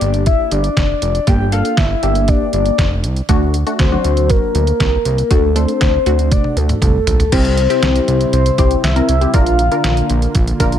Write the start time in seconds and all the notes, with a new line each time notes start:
Already playing: A#3 D4 G4 D5
0.01 G1, closed hi-hat
0.14 closed hi-hat
0.26 E5, kick, closed hi-hat
0.51 G1 D5, closed hi-hat
0.64 closed hi-hat
0.77 F1, kick, snare, closed hi-hat
1.02 F1, closed hi-hat
1.15 closed hi-hat
1.27 G1 A#3 D4 G4 G5, kick, closed hi-hat
1.52 A#3 D4 A4 F5, closed hi-hat
1.65 closed hi-hat
1.77 G1 E5, kick, snare, closed hi-hat
2.03 G1 A#3 D4 G4, closed hi-hat
2.15 closed hi-hat
2.28 D5, kick, closed hi-hat
2.53 G1 D5, closed hi-hat
2.66 closed hi-hat
2.78 F1, kick, snare, closed hi-hat
3.04 C2, closed hi-hat
3.16 closed hi-hat
3.29 D2 A3 D4 F#4, kick, closed hi-hat
3.54 closed hi-hat
3.67 A3 D4 F#4, closed hi-hat
3.79 D2 C5, kick, snare, closed hi-hat
3.92 F#3 D4 F#4
4.04 D2, closed hi-hat
4.17 closed hi-hat
4.30 A#4, kick, closed hi-hat
4.55 D2, closed hi-hat
4.67 closed hi-hat
4.80 C2, kick, snare, closed hi-hat
5.05 C2, closed hi-hat
5.18 closed hi-hat
5.31 D2 A3 D4 F#4 A4, kick, closed hi-hat
5.56 A3 D4 A4 C5, closed hi-hat
5.68 closed hi-hat
5.81 D2, kick, snare, closed hi-hat
6.06 D2 A3 D4 F#4, closed hi-hat
6.19 closed hi-hat
6.31 D5, kick, closed hi-hat, high tom
6.44 high tom
6.57 D2 A4, closed hi-hat
6.69 closed hi-hat, mid tom
6.82 C2 A4, kick, closed hi-hat, mid tom
7.07 A#1, closed hi-hat, floor tom
7.20 closed hi-hat, floor tom
7.32 C2 C3 G3 C4 E4 G4 C5, kick, closed hi-hat, crash
7.45 closed hi-hat
7.57 closed hi-hat
7.70 C4 E4 G4, closed hi-hat
7.83 C2, snare, closed hi-hat
7.96 closed hi-hat
8.08 C2, closed hi-hat
8.21 closed hi-hat
8.33 C2 C5, closed hi-hat
8.46 closed hi-hat
8.58 C2 C4 E4 G4 C5, kick, closed hi-hat
8.71 closed hi-hat
8.84 C2 E5, snare, closed hi-hat
8.96 C4 E4 A#4, closed hi-hat
9.09 C2, closed hi-hat
9.21 C4 E4 G4, closed hi-hat
9.34 A#1 D3 A#3 D4 F4 A#4 F5, kick, closed hi-hat
9.46 closed hi-hat
9.59 closed hi-hat
9.71 D4 F4 A#4, closed hi-hat
9.84 A#1, snare, closed hi-hat
9.97 closed hi-hat
10.10 A#1, closed hi-hat
10.22 closed hi-hat
10.35 A#1, kick, closed hi-hat
10.47 closed hi-hat
10.60 A#1 D4 F4 A#4, kick, closed hi-hat
10.72 closed hi-hat